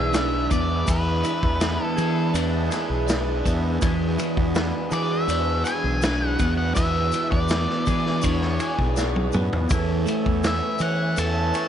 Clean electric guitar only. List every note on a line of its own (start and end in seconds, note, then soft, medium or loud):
0.00 0.16 E3 medium
0.00 0.49 B3 medium
0.00 0.12 D4 medium
0.00 1.96 G#4 medium
0.13 1.99 D4 medium
0.50 1.60 B3 medium
0.87 1.23 E3 medium
1.23 3.10 E3 medium
1.60 3.43 B3 medium
1.96 2.70 G#4 medium
2.34 3.06 D4 medium
2.71 4.91 G#4 medium
3.07 4.95 D4 medium
3.44 4.55 B3 medium
3.82 4.17 E3 medium
4.18 6.05 E3 medium
4.55 6.38 B3 medium
4.92 5.64 G#4 medium
5.29 6.01 D4 medium
5.66 7.49 G#4 medium
6.02 7.86 D4 medium
6.39 7.48 B3 medium
6.75 7.12 E3 medium
7.12 9.00 E3 medium
7.49 9.32 B3 medium
7.87 8.59 G#4 medium
8.23 8.96 D4 medium
8.60 9.70 G#4 medium
8.97 9.70 D4 medium
9.33 9.70 B3 medium
9.69 11.68 E3 medium
10.06 11.68 A3 medium
10.44 11.68 E4 medium
10.80 11.53 C#5 medium
11.17 11.68 A4 medium
11.54 11.68 C#5 medium